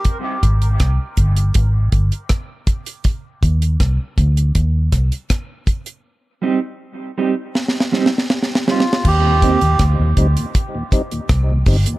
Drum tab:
CC |------------------------------------------------|------------------------------------------------|------------------------------------------------|x-----------------------------------------------|
HH |x-----x--x--x-----x--x--x-----x--x--x-----x--x--|x-----x--x--x-----x--x--x-----x--x--x-----x--x--|------------------------------------------------|------x--x--x-----x--x--x-----x--x--x-----o--x--|
SD |------------r-----------------------r-----------|------------r-----------------r-----r-----------|------------------------o-o-o-o-o-o-o-o-o-o-o-o-|------------r-----------------------r-----------|
BD |o-----o-----o-----o-----o-----o-----o-----o-----|o-----o-----o-----o-----o-----o-----o-----o-----|------------------------------------------------|o-----o-----o-----o-----o-----o-----o-----o-----|